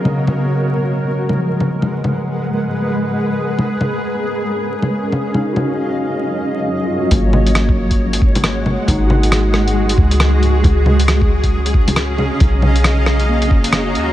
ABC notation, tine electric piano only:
X:1
M:4/4
L:1/16
Q:"Swing 16ths" 1/4=136
K:G#dor
V:1 name="Tine electric piano"
[C,F,C]12 E,4- | E,8- E, z6 z | z12 G,4 | D F8- F3 C E F2 |
A,12- A, z3 | D F12- F z2 | z16 | z8 A, C6- C |]